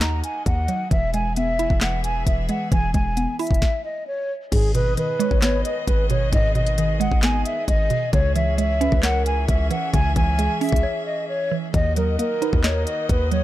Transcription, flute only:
0, 0, Header, 1, 2, 480
1, 0, Start_track
1, 0, Key_signature, 5, "minor"
1, 0, Tempo, 451128
1, 970, Time_signature, 4, 2, 24, 8
1, 14296, End_track
2, 0, Start_track
2, 0, Title_t, "Flute"
2, 0, Program_c, 0, 73
2, 5, Note_on_c, 0, 82, 81
2, 213, Note_off_c, 0, 82, 0
2, 252, Note_on_c, 0, 80, 82
2, 456, Note_off_c, 0, 80, 0
2, 493, Note_on_c, 0, 78, 91
2, 943, Note_off_c, 0, 78, 0
2, 970, Note_on_c, 0, 76, 102
2, 1175, Note_off_c, 0, 76, 0
2, 1212, Note_on_c, 0, 80, 89
2, 1417, Note_off_c, 0, 80, 0
2, 1454, Note_on_c, 0, 76, 98
2, 1904, Note_off_c, 0, 76, 0
2, 1934, Note_on_c, 0, 78, 83
2, 2138, Note_off_c, 0, 78, 0
2, 2172, Note_on_c, 0, 80, 87
2, 2376, Note_off_c, 0, 80, 0
2, 2414, Note_on_c, 0, 76, 73
2, 2618, Note_off_c, 0, 76, 0
2, 2655, Note_on_c, 0, 78, 76
2, 2858, Note_off_c, 0, 78, 0
2, 2894, Note_on_c, 0, 80, 109
2, 3097, Note_off_c, 0, 80, 0
2, 3131, Note_on_c, 0, 80, 86
2, 3582, Note_off_c, 0, 80, 0
2, 3616, Note_on_c, 0, 76, 80
2, 4065, Note_off_c, 0, 76, 0
2, 4092, Note_on_c, 0, 75, 74
2, 4297, Note_off_c, 0, 75, 0
2, 4332, Note_on_c, 0, 73, 89
2, 4597, Note_off_c, 0, 73, 0
2, 4814, Note_on_c, 0, 68, 95
2, 5017, Note_off_c, 0, 68, 0
2, 5050, Note_on_c, 0, 71, 92
2, 5255, Note_off_c, 0, 71, 0
2, 5289, Note_on_c, 0, 71, 95
2, 5741, Note_off_c, 0, 71, 0
2, 5771, Note_on_c, 0, 73, 82
2, 5976, Note_off_c, 0, 73, 0
2, 6007, Note_on_c, 0, 75, 85
2, 6214, Note_off_c, 0, 75, 0
2, 6249, Note_on_c, 0, 71, 83
2, 6455, Note_off_c, 0, 71, 0
2, 6492, Note_on_c, 0, 73, 89
2, 6696, Note_off_c, 0, 73, 0
2, 6736, Note_on_c, 0, 75, 114
2, 6939, Note_off_c, 0, 75, 0
2, 6974, Note_on_c, 0, 75, 89
2, 7424, Note_off_c, 0, 75, 0
2, 7451, Note_on_c, 0, 78, 90
2, 7656, Note_off_c, 0, 78, 0
2, 7693, Note_on_c, 0, 80, 81
2, 7897, Note_off_c, 0, 80, 0
2, 7934, Note_on_c, 0, 76, 81
2, 8138, Note_off_c, 0, 76, 0
2, 8175, Note_on_c, 0, 75, 89
2, 8624, Note_off_c, 0, 75, 0
2, 8653, Note_on_c, 0, 73, 104
2, 8857, Note_off_c, 0, 73, 0
2, 8889, Note_on_c, 0, 76, 88
2, 9095, Note_off_c, 0, 76, 0
2, 9131, Note_on_c, 0, 76, 100
2, 9582, Note_off_c, 0, 76, 0
2, 9613, Note_on_c, 0, 78, 102
2, 9817, Note_off_c, 0, 78, 0
2, 9855, Note_on_c, 0, 80, 84
2, 10058, Note_off_c, 0, 80, 0
2, 10090, Note_on_c, 0, 76, 85
2, 10295, Note_off_c, 0, 76, 0
2, 10331, Note_on_c, 0, 78, 79
2, 10536, Note_off_c, 0, 78, 0
2, 10568, Note_on_c, 0, 80, 108
2, 10774, Note_off_c, 0, 80, 0
2, 10810, Note_on_c, 0, 80, 92
2, 11262, Note_off_c, 0, 80, 0
2, 11295, Note_on_c, 0, 76, 92
2, 11744, Note_off_c, 0, 76, 0
2, 11769, Note_on_c, 0, 75, 80
2, 11974, Note_off_c, 0, 75, 0
2, 12006, Note_on_c, 0, 73, 92
2, 12272, Note_off_c, 0, 73, 0
2, 12491, Note_on_c, 0, 75, 108
2, 12696, Note_off_c, 0, 75, 0
2, 12735, Note_on_c, 0, 70, 85
2, 12938, Note_off_c, 0, 70, 0
2, 12975, Note_on_c, 0, 70, 92
2, 13424, Note_off_c, 0, 70, 0
2, 13456, Note_on_c, 0, 73, 79
2, 13659, Note_off_c, 0, 73, 0
2, 13687, Note_on_c, 0, 75, 75
2, 13893, Note_off_c, 0, 75, 0
2, 13935, Note_on_c, 0, 71, 85
2, 14138, Note_off_c, 0, 71, 0
2, 14167, Note_on_c, 0, 73, 87
2, 14296, Note_off_c, 0, 73, 0
2, 14296, End_track
0, 0, End_of_file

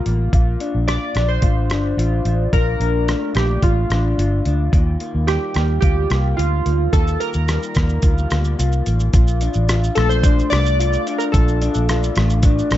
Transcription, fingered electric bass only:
0, 0, Header, 1, 2, 480
1, 0, Start_track
1, 0, Key_signature, -2, "major"
1, 0, Tempo, 550509
1, 285, Time_signature, 4, 2, 24, 8
1, 11138, End_track
2, 0, Start_track
2, 0, Title_t, "Fingered electric bass"
2, 0, Program_c, 0, 33
2, 54, Note_on_c, 0, 33, 82
2, 242, Note_off_c, 0, 33, 0
2, 289, Note_on_c, 0, 34, 104
2, 479, Note_off_c, 0, 34, 0
2, 651, Note_on_c, 0, 34, 78
2, 840, Note_off_c, 0, 34, 0
2, 1008, Note_on_c, 0, 34, 84
2, 1199, Note_off_c, 0, 34, 0
2, 1242, Note_on_c, 0, 33, 83
2, 1484, Note_off_c, 0, 33, 0
2, 1484, Note_on_c, 0, 31, 92
2, 1677, Note_off_c, 0, 31, 0
2, 1719, Note_on_c, 0, 33, 79
2, 1914, Note_off_c, 0, 33, 0
2, 1963, Note_on_c, 0, 33, 74
2, 2156, Note_off_c, 0, 33, 0
2, 2205, Note_on_c, 0, 34, 100
2, 2397, Note_off_c, 0, 34, 0
2, 2441, Note_on_c, 0, 34, 88
2, 2731, Note_off_c, 0, 34, 0
2, 2924, Note_on_c, 0, 34, 86
2, 3116, Note_off_c, 0, 34, 0
2, 3162, Note_on_c, 0, 33, 83
2, 3355, Note_off_c, 0, 33, 0
2, 3401, Note_on_c, 0, 33, 74
2, 3595, Note_off_c, 0, 33, 0
2, 3642, Note_on_c, 0, 31, 80
2, 3835, Note_off_c, 0, 31, 0
2, 3888, Note_on_c, 0, 38, 77
2, 4079, Note_off_c, 0, 38, 0
2, 4123, Note_on_c, 0, 39, 103
2, 4316, Note_off_c, 0, 39, 0
2, 4487, Note_on_c, 0, 39, 76
2, 4678, Note_off_c, 0, 39, 0
2, 4844, Note_on_c, 0, 39, 88
2, 5037, Note_off_c, 0, 39, 0
2, 5079, Note_on_c, 0, 38, 83
2, 5273, Note_off_c, 0, 38, 0
2, 5323, Note_on_c, 0, 36, 92
2, 5516, Note_off_c, 0, 36, 0
2, 5565, Note_on_c, 0, 38, 89
2, 5757, Note_off_c, 0, 38, 0
2, 5805, Note_on_c, 0, 38, 74
2, 5997, Note_off_c, 0, 38, 0
2, 6045, Note_on_c, 0, 39, 95
2, 6237, Note_off_c, 0, 39, 0
2, 6407, Note_on_c, 0, 39, 75
2, 6599, Note_off_c, 0, 39, 0
2, 6770, Note_on_c, 0, 39, 101
2, 6960, Note_off_c, 0, 39, 0
2, 6998, Note_on_c, 0, 38, 84
2, 7193, Note_off_c, 0, 38, 0
2, 7249, Note_on_c, 0, 38, 82
2, 7440, Note_off_c, 0, 38, 0
2, 7492, Note_on_c, 0, 36, 80
2, 7681, Note_off_c, 0, 36, 0
2, 7733, Note_on_c, 0, 33, 77
2, 7922, Note_off_c, 0, 33, 0
2, 7968, Note_on_c, 0, 34, 96
2, 8255, Note_off_c, 0, 34, 0
2, 8331, Note_on_c, 0, 33, 80
2, 8617, Note_off_c, 0, 33, 0
2, 8692, Note_on_c, 0, 34, 88
2, 9073, Note_off_c, 0, 34, 0
2, 9173, Note_on_c, 0, 36, 77
2, 9554, Note_off_c, 0, 36, 0
2, 9890, Note_on_c, 0, 34, 117
2, 10176, Note_off_c, 0, 34, 0
2, 10249, Note_on_c, 0, 34, 71
2, 10535, Note_off_c, 0, 34, 0
2, 10608, Note_on_c, 0, 33, 97
2, 10991, Note_off_c, 0, 33, 0
2, 11083, Note_on_c, 0, 34, 91
2, 11138, Note_off_c, 0, 34, 0
2, 11138, End_track
0, 0, End_of_file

